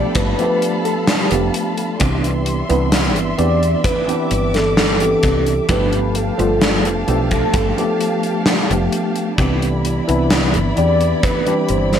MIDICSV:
0, 0, Header, 1, 6, 480
1, 0, Start_track
1, 0, Key_signature, 0, "major"
1, 0, Tempo, 923077
1, 1040, Time_signature, 4, 2, 24, 8
1, 6237, End_track
2, 0, Start_track
2, 0, Title_t, "String section"
2, 0, Program_c, 0, 48
2, 0, Note_on_c, 0, 69, 80
2, 0, Note_on_c, 0, 77, 70
2, 0, Note_on_c, 0, 79, 69
2, 0, Note_on_c, 0, 83, 82
2, 71, Note_off_c, 0, 79, 0
2, 80, Note_on_c, 0, 81, 69
2, 1021, Note_off_c, 0, 69, 0
2, 1021, Note_off_c, 0, 77, 0
2, 1021, Note_off_c, 0, 83, 0
2, 1030, Note_off_c, 0, 81, 0
2, 1040, Note_on_c, 0, 74, 72
2, 1040, Note_on_c, 0, 76, 75
2, 1041, Note_on_c, 0, 84, 85
2, 1991, Note_off_c, 0, 84, 0
2, 2001, Note_on_c, 0, 86, 85
2, 2941, Note_off_c, 0, 74, 0
2, 2941, Note_off_c, 0, 76, 0
2, 2951, Note_off_c, 0, 86, 0
2, 2959, Note_on_c, 0, 77, 75
2, 2960, Note_on_c, 0, 67, 75
2, 2960, Note_on_c, 0, 81, 85
2, 4860, Note_off_c, 0, 77, 0
2, 4861, Note_off_c, 0, 67, 0
2, 4861, Note_off_c, 0, 81, 0
2, 4880, Note_on_c, 0, 64, 82
2, 4880, Note_on_c, 0, 74, 74
2, 4880, Note_on_c, 0, 83, 86
2, 6237, Note_off_c, 0, 64, 0
2, 6237, Note_off_c, 0, 74, 0
2, 6237, Note_off_c, 0, 83, 0
2, 6237, End_track
3, 0, Start_track
3, 0, Title_t, "Soft synth lead"
3, 0, Program_c, 1, 80
3, 0, Note_on_c, 1, 74, 111
3, 77, Note_on_c, 1, 71, 105
3, 85, Note_off_c, 1, 74, 0
3, 436, Note_off_c, 1, 71, 0
3, 439, Note_on_c, 1, 69, 89
3, 556, Note_on_c, 1, 67, 84
3, 564, Note_off_c, 1, 69, 0
3, 921, Note_off_c, 1, 67, 0
3, 1758, Note_on_c, 1, 74, 112
3, 1998, Note_on_c, 1, 71, 106
3, 2006, Note_off_c, 1, 74, 0
3, 2362, Note_on_c, 1, 69, 90
3, 2370, Note_off_c, 1, 71, 0
3, 2476, Note_off_c, 1, 69, 0
3, 2479, Note_on_c, 1, 69, 104
3, 2939, Note_off_c, 1, 69, 0
3, 2963, Note_on_c, 1, 71, 95
3, 3202, Note_on_c, 1, 69, 100
3, 3210, Note_off_c, 1, 71, 0
3, 3678, Note_off_c, 1, 69, 0
3, 3681, Note_on_c, 1, 69, 100
3, 4620, Note_off_c, 1, 69, 0
3, 5600, Note_on_c, 1, 74, 112
3, 5839, Note_on_c, 1, 71, 98
3, 5847, Note_off_c, 1, 74, 0
3, 6079, Note_on_c, 1, 72, 102
3, 6087, Note_off_c, 1, 71, 0
3, 6237, Note_off_c, 1, 72, 0
3, 6237, End_track
4, 0, Start_track
4, 0, Title_t, "Tine electric piano"
4, 0, Program_c, 2, 4
4, 0, Note_on_c, 2, 53, 94
4, 0, Note_on_c, 2, 57, 85
4, 0, Note_on_c, 2, 59, 88
4, 0, Note_on_c, 2, 62, 85
4, 0, Note_on_c, 2, 67, 98
4, 172, Note_off_c, 2, 53, 0
4, 173, Note_off_c, 2, 57, 0
4, 174, Note_off_c, 2, 59, 0
4, 175, Note_off_c, 2, 62, 0
4, 176, Note_off_c, 2, 67, 0
4, 200, Note_on_c, 2, 53, 95
4, 202, Note_on_c, 2, 57, 88
4, 204, Note_on_c, 2, 59, 89
4, 206, Note_on_c, 2, 62, 86
4, 208, Note_on_c, 2, 67, 108
4, 652, Note_off_c, 2, 53, 0
4, 653, Note_off_c, 2, 57, 0
4, 654, Note_off_c, 2, 59, 0
4, 655, Note_off_c, 2, 62, 0
4, 656, Note_off_c, 2, 67, 0
4, 679, Note_on_c, 2, 53, 81
4, 681, Note_on_c, 2, 57, 75
4, 683, Note_on_c, 2, 59, 77
4, 685, Note_on_c, 2, 62, 74
4, 687, Note_on_c, 2, 67, 89
4, 1010, Note_off_c, 2, 53, 0
4, 1011, Note_off_c, 2, 57, 0
4, 1012, Note_off_c, 2, 59, 0
4, 1013, Note_off_c, 2, 62, 0
4, 1014, Note_off_c, 2, 67, 0
4, 1035, Note_on_c, 2, 52, 87
4, 1037, Note_on_c, 2, 59, 80
4, 1039, Note_on_c, 2, 60, 85
4, 1041, Note_on_c, 2, 62, 77
4, 1044, Note_on_c, 2, 67, 97
4, 1371, Note_off_c, 2, 52, 0
4, 1372, Note_off_c, 2, 59, 0
4, 1374, Note_off_c, 2, 60, 0
4, 1374, Note_off_c, 2, 62, 0
4, 1376, Note_off_c, 2, 67, 0
4, 1399, Note_on_c, 2, 52, 100
4, 1401, Note_on_c, 2, 59, 96
4, 1403, Note_on_c, 2, 60, 91
4, 1405, Note_on_c, 2, 62, 94
4, 1407, Note_on_c, 2, 64, 112
4, 1730, Note_off_c, 2, 52, 0
4, 1731, Note_off_c, 2, 59, 0
4, 1732, Note_off_c, 2, 60, 0
4, 1733, Note_off_c, 2, 62, 0
4, 1734, Note_off_c, 2, 64, 0
4, 1756, Note_on_c, 2, 52, 95
4, 1757, Note_on_c, 2, 59, 87
4, 1760, Note_on_c, 2, 60, 88
4, 1761, Note_on_c, 2, 62, 86
4, 1763, Note_on_c, 2, 67, 103
4, 2092, Note_off_c, 2, 52, 0
4, 2092, Note_off_c, 2, 59, 0
4, 2094, Note_off_c, 2, 60, 0
4, 2094, Note_off_c, 2, 62, 0
4, 2095, Note_off_c, 2, 67, 0
4, 2117, Note_on_c, 2, 52, 98
4, 2120, Note_on_c, 2, 59, 94
4, 2122, Note_on_c, 2, 60, 89
4, 2123, Note_on_c, 2, 62, 91
4, 2125, Note_on_c, 2, 67, 112
4, 2571, Note_off_c, 2, 52, 0
4, 2572, Note_off_c, 2, 59, 0
4, 2573, Note_off_c, 2, 60, 0
4, 2573, Note_off_c, 2, 62, 0
4, 2575, Note_off_c, 2, 67, 0
4, 2598, Note_on_c, 2, 52, 83
4, 2601, Note_on_c, 2, 59, 77
4, 2602, Note_on_c, 2, 60, 78
4, 2605, Note_on_c, 2, 62, 75
4, 2606, Note_on_c, 2, 67, 93
4, 2929, Note_off_c, 2, 52, 0
4, 2931, Note_off_c, 2, 59, 0
4, 2931, Note_off_c, 2, 60, 0
4, 2933, Note_off_c, 2, 62, 0
4, 2934, Note_off_c, 2, 67, 0
4, 2957, Note_on_c, 2, 53, 92
4, 2959, Note_on_c, 2, 57, 82
4, 2961, Note_on_c, 2, 59, 81
4, 2963, Note_on_c, 2, 62, 81
4, 2966, Note_on_c, 2, 67, 98
4, 3292, Note_off_c, 2, 53, 0
4, 3293, Note_off_c, 2, 57, 0
4, 3294, Note_off_c, 2, 59, 0
4, 3295, Note_off_c, 2, 62, 0
4, 3297, Note_off_c, 2, 67, 0
4, 3318, Note_on_c, 2, 53, 106
4, 3320, Note_on_c, 2, 57, 91
4, 3323, Note_on_c, 2, 59, 93
4, 3325, Note_on_c, 2, 62, 93
4, 3327, Note_on_c, 2, 65, 112
4, 3650, Note_off_c, 2, 53, 0
4, 3651, Note_off_c, 2, 57, 0
4, 3652, Note_off_c, 2, 59, 0
4, 3653, Note_off_c, 2, 62, 0
4, 3654, Note_off_c, 2, 65, 0
4, 3676, Note_on_c, 2, 53, 97
4, 3678, Note_on_c, 2, 57, 89
4, 3681, Note_on_c, 2, 59, 89
4, 3683, Note_on_c, 2, 62, 88
4, 3684, Note_on_c, 2, 67, 106
4, 4012, Note_off_c, 2, 53, 0
4, 4013, Note_off_c, 2, 57, 0
4, 4014, Note_off_c, 2, 59, 0
4, 4015, Note_off_c, 2, 62, 0
4, 4016, Note_off_c, 2, 67, 0
4, 4040, Note_on_c, 2, 53, 95
4, 4041, Note_on_c, 2, 57, 91
4, 4043, Note_on_c, 2, 59, 92
4, 4045, Note_on_c, 2, 62, 92
4, 4048, Note_on_c, 2, 67, 107
4, 4492, Note_off_c, 2, 53, 0
4, 4493, Note_off_c, 2, 57, 0
4, 4494, Note_off_c, 2, 59, 0
4, 4495, Note_off_c, 2, 62, 0
4, 4496, Note_off_c, 2, 67, 0
4, 4521, Note_on_c, 2, 53, 81
4, 4523, Note_on_c, 2, 57, 76
4, 4525, Note_on_c, 2, 59, 77
4, 4527, Note_on_c, 2, 62, 76
4, 4529, Note_on_c, 2, 67, 90
4, 4851, Note_off_c, 2, 53, 0
4, 4852, Note_off_c, 2, 57, 0
4, 4853, Note_off_c, 2, 59, 0
4, 4854, Note_off_c, 2, 62, 0
4, 4855, Note_off_c, 2, 67, 0
4, 4878, Note_on_c, 2, 52, 91
4, 4880, Note_on_c, 2, 59, 80
4, 4882, Note_on_c, 2, 60, 80
4, 4884, Note_on_c, 2, 62, 83
4, 4886, Note_on_c, 2, 67, 96
4, 5213, Note_off_c, 2, 52, 0
4, 5214, Note_off_c, 2, 59, 0
4, 5215, Note_off_c, 2, 60, 0
4, 5216, Note_off_c, 2, 62, 0
4, 5217, Note_off_c, 2, 67, 0
4, 5241, Note_on_c, 2, 52, 105
4, 5243, Note_on_c, 2, 59, 90
4, 5246, Note_on_c, 2, 60, 93
4, 5247, Note_on_c, 2, 62, 93
4, 5249, Note_on_c, 2, 64, 115
4, 5571, Note_off_c, 2, 52, 0
4, 5572, Note_off_c, 2, 59, 0
4, 5573, Note_off_c, 2, 60, 0
4, 5574, Note_off_c, 2, 62, 0
4, 5575, Note_off_c, 2, 64, 0
4, 5596, Note_on_c, 2, 52, 93
4, 5598, Note_on_c, 2, 59, 86
4, 5601, Note_on_c, 2, 60, 87
4, 5602, Note_on_c, 2, 62, 87
4, 5605, Note_on_c, 2, 67, 108
4, 5932, Note_off_c, 2, 52, 0
4, 5933, Note_off_c, 2, 59, 0
4, 5934, Note_off_c, 2, 60, 0
4, 5935, Note_off_c, 2, 62, 0
4, 5936, Note_off_c, 2, 67, 0
4, 5960, Note_on_c, 2, 52, 97
4, 5960, Note_on_c, 2, 55, 93
4, 5963, Note_on_c, 2, 60, 89
4, 5965, Note_on_c, 2, 62, 89
4, 5967, Note_on_c, 2, 67, 111
4, 6237, Note_off_c, 2, 52, 0
4, 6237, Note_off_c, 2, 55, 0
4, 6237, Note_off_c, 2, 60, 0
4, 6237, Note_off_c, 2, 62, 0
4, 6237, Note_off_c, 2, 67, 0
4, 6237, End_track
5, 0, Start_track
5, 0, Title_t, "Fretless electric bass"
5, 0, Program_c, 3, 35
5, 81, Note_on_c, 3, 31, 80
5, 174, Note_off_c, 3, 31, 0
5, 683, Note_on_c, 3, 29, 91
5, 772, Note_off_c, 3, 29, 0
5, 1045, Note_on_c, 3, 36, 96
5, 1358, Note_off_c, 3, 36, 0
5, 1403, Note_on_c, 3, 36, 97
5, 1644, Note_off_c, 3, 36, 0
5, 1644, Note_on_c, 3, 31, 92
5, 1732, Note_off_c, 3, 31, 0
5, 1761, Note_on_c, 3, 40, 81
5, 1944, Note_off_c, 3, 40, 0
5, 2241, Note_on_c, 3, 31, 81
5, 2676, Note_off_c, 3, 31, 0
5, 2722, Note_on_c, 3, 36, 88
5, 2905, Note_off_c, 3, 36, 0
5, 2959, Note_on_c, 3, 31, 96
5, 3275, Note_off_c, 3, 31, 0
5, 3323, Note_on_c, 3, 31, 93
5, 3565, Note_off_c, 3, 31, 0
5, 3565, Note_on_c, 3, 29, 91
5, 3653, Note_off_c, 3, 29, 0
5, 3682, Note_on_c, 3, 35, 82
5, 3865, Note_off_c, 3, 35, 0
5, 3921, Note_on_c, 3, 31, 82
5, 4014, Note_off_c, 3, 31, 0
5, 4526, Note_on_c, 3, 29, 92
5, 4613, Note_off_c, 3, 29, 0
5, 4879, Note_on_c, 3, 36, 95
5, 5195, Note_off_c, 3, 36, 0
5, 5246, Note_on_c, 3, 36, 96
5, 5485, Note_on_c, 3, 31, 92
5, 5493, Note_off_c, 3, 36, 0
5, 5573, Note_off_c, 3, 31, 0
5, 5602, Note_on_c, 3, 40, 78
5, 5785, Note_off_c, 3, 40, 0
5, 6081, Note_on_c, 3, 31, 80
5, 6237, Note_off_c, 3, 31, 0
5, 6237, End_track
6, 0, Start_track
6, 0, Title_t, "Drums"
6, 77, Note_on_c, 9, 42, 94
6, 81, Note_on_c, 9, 36, 117
6, 129, Note_off_c, 9, 42, 0
6, 133, Note_off_c, 9, 36, 0
6, 203, Note_on_c, 9, 42, 51
6, 255, Note_off_c, 9, 42, 0
6, 323, Note_on_c, 9, 42, 83
6, 375, Note_off_c, 9, 42, 0
6, 443, Note_on_c, 9, 42, 50
6, 495, Note_off_c, 9, 42, 0
6, 559, Note_on_c, 9, 38, 98
6, 559, Note_on_c, 9, 42, 89
6, 611, Note_off_c, 9, 38, 0
6, 611, Note_off_c, 9, 42, 0
6, 680, Note_on_c, 9, 42, 60
6, 732, Note_off_c, 9, 42, 0
6, 802, Note_on_c, 9, 42, 78
6, 854, Note_off_c, 9, 42, 0
6, 923, Note_on_c, 9, 42, 55
6, 975, Note_off_c, 9, 42, 0
6, 1039, Note_on_c, 9, 42, 98
6, 1045, Note_on_c, 9, 36, 124
6, 1091, Note_off_c, 9, 42, 0
6, 1097, Note_off_c, 9, 36, 0
6, 1166, Note_on_c, 9, 42, 54
6, 1218, Note_off_c, 9, 42, 0
6, 1279, Note_on_c, 9, 42, 79
6, 1331, Note_off_c, 9, 42, 0
6, 1402, Note_on_c, 9, 42, 61
6, 1454, Note_off_c, 9, 42, 0
6, 1519, Note_on_c, 9, 42, 100
6, 1520, Note_on_c, 9, 38, 102
6, 1571, Note_off_c, 9, 42, 0
6, 1572, Note_off_c, 9, 38, 0
6, 1643, Note_on_c, 9, 42, 52
6, 1695, Note_off_c, 9, 42, 0
6, 1761, Note_on_c, 9, 42, 55
6, 1813, Note_off_c, 9, 42, 0
6, 1887, Note_on_c, 9, 42, 50
6, 1939, Note_off_c, 9, 42, 0
6, 1999, Note_on_c, 9, 36, 127
6, 2004, Note_on_c, 9, 42, 98
6, 2051, Note_off_c, 9, 36, 0
6, 2056, Note_off_c, 9, 42, 0
6, 2126, Note_on_c, 9, 42, 55
6, 2178, Note_off_c, 9, 42, 0
6, 2240, Note_on_c, 9, 42, 84
6, 2292, Note_off_c, 9, 42, 0
6, 2362, Note_on_c, 9, 42, 57
6, 2365, Note_on_c, 9, 38, 37
6, 2414, Note_off_c, 9, 42, 0
6, 2417, Note_off_c, 9, 38, 0
6, 2481, Note_on_c, 9, 38, 104
6, 2482, Note_on_c, 9, 42, 87
6, 2533, Note_off_c, 9, 38, 0
6, 2534, Note_off_c, 9, 42, 0
6, 2601, Note_on_c, 9, 42, 58
6, 2653, Note_off_c, 9, 42, 0
6, 2718, Note_on_c, 9, 42, 82
6, 2722, Note_on_c, 9, 36, 95
6, 2770, Note_off_c, 9, 42, 0
6, 2774, Note_off_c, 9, 36, 0
6, 2842, Note_on_c, 9, 42, 55
6, 2894, Note_off_c, 9, 42, 0
6, 2957, Note_on_c, 9, 42, 94
6, 2959, Note_on_c, 9, 36, 124
6, 3009, Note_off_c, 9, 42, 0
6, 3011, Note_off_c, 9, 36, 0
6, 3082, Note_on_c, 9, 42, 53
6, 3134, Note_off_c, 9, 42, 0
6, 3198, Note_on_c, 9, 42, 82
6, 3250, Note_off_c, 9, 42, 0
6, 3325, Note_on_c, 9, 42, 54
6, 3377, Note_off_c, 9, 42, 0
6, 3440, Note_on_c, 9, 42, 87
6, 3441, Note_on_c, 9, 38, 108
6, 3492, Note_off_c, 9, 42, 0
6, 3493, Note_off_c, 9, 38, 0
6, 3563, Note_on_c, 9, 42, 54
6, 3615, Note_off_c, 9, 42, 0
6, 3681, Note_on_c, 9, 42, 55
6, 3733, Note_off_c, 9, 42, 0
6, 3801, Note_on_c, 9, 42, 58
6, 3804, Note_on_c, 9, 36, 67
6, 3853, Note_off_c, 9, 42, 0
6, 3856, Note_off_c, 9, 36, 0
6, 3919, Note_on_c, 9, 42, 101
6, 3920, Note_on_c, 9, 36, 121
6, 3971, Note_off_c, 9, 42, 0
6, 3972, Note_off_c, 9, 36, 0
6, 4047, Note_on_c, 9, 42, 52
6, 4099, Note_off_c, 9, 42, 0
6, 4163, Note_on_c, 9, 42, 72
6, 4215, Note_off_c, 9, 42, 0
6, 4281, Note_on_c, 9, 42, 49
6, 4333, Note_off_c, 9, 42, 0
6, 4398, Note_on_c, 9, 38, 117
6, 4401, Note_on_c, 9, 42, 92
6, 4450, Note_off_c, 9, 38, 0
6, 4453, Note_off_c, 9, 42, 0
6, 4527, Note_on_c, 9, 42, 54
6, 4579, Note_off_c, 9, 42, 0
6, 4641, Note_on_c, 9, 42, 78
6, 4693, Note_off_c, 9, 42, 0
6, 4761, Note_on_c, 9, 42, 60
6, 4813, Note_off_c, 9, 42, 0
6, 4879, Note_on_c, 9, 36, 113
6, 4879, Note_on_c, 9, 42, 91
6, 4931, Note_off_c, 9, 36, 0
6, 4931, Note_off_c, 9, 42, 0
6, 5004, Note_on_c, 9, 42, 57
6, 5056, Note_off_c, 9, 42, 0
6, 5121, Note_on_c, 9, 42, 79
6, 5173, Note_off_c, 9, 42, 0
6, 5245, Note_on_c, 9, 42, 55
6, 5297, Note_off_c, 9, 42, 0
6, 5358, Note_on_c, 9, 42, 96
6, 5359, Note_on_c, 9, 38, 112
6, 5410, Note_off_c, 9, 42, 0
6, 5411, Note_off_c, 9, 38, 0
6, 5480, Note_on_c, 9, 42, 56
6, 5532, Note_off_c, 9, 42, 0
6, 5600, Note_on_c, 9, 42, 55
6, 5652, Note_off_c, 9, 42, 0
6, 5723, Note_on_c, 9, 42, 57
6, 5775, Note_off_c, 9, 42, 0
6, 5841, Note_on_c, 9, 36, 118
6, 5841, Note_on_c, 9, 42, 89
6, 5893, Note_off_c, 9, 36, 0
6, 5893, Note_off_c, 9, 42, 0
6, 5962, Note_on_c, 9, 42, 48
6, 6014, Note_off_c, 9, 42, 0
6, 6076, Note_on_c, 9, 42, 69
6, 6128, Note_off_c, 9, 42, 0
6, 6201, Note_on_c, 9, 38, 35
6, 6203, Note_on_c, 9, 42, 51
6, 6237, Note_off_c, 9, 38, 0
6, 6237, Note_off_c, 9, 42, 0
6, 6237, End_track
0, 0, End_of_file